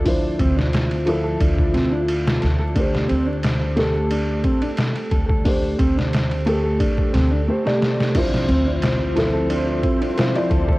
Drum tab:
CC |----------------|----------------|----------------|x---------------|
RD |--x-xxx-x-x-x-x-|x-x-x-x-x-xxxxx-|--x-xxx-x-x-----|x-x-x-x-x-xxxxx-|
HH |o---------------|----------------|o---------------|----------------|
SD |---oo-----o--oo-|-o--o-o-----o---|---oo-----o--ooo|-o--o-o-----o---|
BD |o-o-----oo------|o---------o---oo|o-o-----oo------|o---------o---oo|